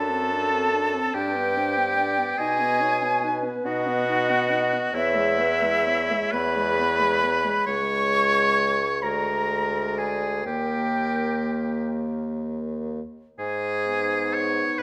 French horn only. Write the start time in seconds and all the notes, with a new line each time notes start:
Already playing: D4
0.10 C4
0.31 D4
0.52 C4
0.73 D4
0.94 C4
1.15 D4
1.36 B3
1.57 D4
1.77 B3
1.99 D4
2.19 B3
2.40 D#4
2.60 B3
2.82 D#4
3.03 B3
3.23 D#4
3.45 B3
3.66 D#4
3.87 B3
4.09 D#4
4.30 B3
4.52 D#4
4.74 B3
4.95 B3
5.16 G#3
5.39 B3
5.62 G#3
5.86 B3
6.11 G#3
6.34 B3
6.57 G#3
6.79 B3
7.02 G#3
7.24 B3
7.45 G#3
7.68 G#3
9.03 G#3
10.46 A#3
13.87 B3